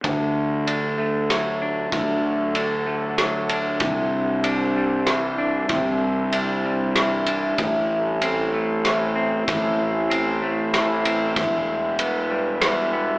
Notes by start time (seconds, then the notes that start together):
0.04 D2 D3 F#3 D4 A4 E5, kick, ride
0.67 D4 A4, ride
0.98 A3
1.30 F#3 E5, cross-stick, ride
1.62 D4
1.92 D2 D3 E5 F#5, kick, ride
2.55 D4 A4, ride
2.87 A3
3.18 F#3 E5, cross-stick, ride
3.49 D4, ride
3.80 C2 C3 G3 C5 E5, kick, ride
4.44 D4 C5, ride
4.76 G3
5.07 E3 E5, cross-stick, ride
5.38 D4
5.69 C2 C3 D5 E5, kick, ride
6.32 D4 C5, ride
6.65 G3
6.96 E3 E5, cross-stick, ride
7.26 D4, ride
7.58 A1 A2 A3 E4 C5 E5, kick, ride
8.22 C4 A4, ride
8.54 A3
8.85 E3 E5, cross-stick, ride
9.16 C4
9.47 A1 A2 E5, kick, ride
10.10 C4 A4, ride
10.42 A3
10.74 E3 E5, cross-stick, ride
11.05 C4, ride
11.36 E1 E2 G3 F#4 B4 E5, kick, ride
11.99 B3 B4, ride
12.31 G3
12.61 E3 E5, cross-stick, ride
12.93 B3